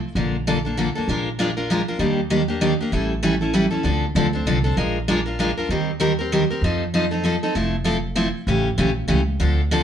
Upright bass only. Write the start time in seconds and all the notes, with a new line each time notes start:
0.15 A#1
1.08 A#1
1.99 D#2
2.92 A1
3.84 D2
4.15 D2
4.46 C2
4.77 A#1
5.69 D#2
6.62 F2
7.55 F1
8.47 A1
8.78 A#1
9.09 C#2
9.40 D2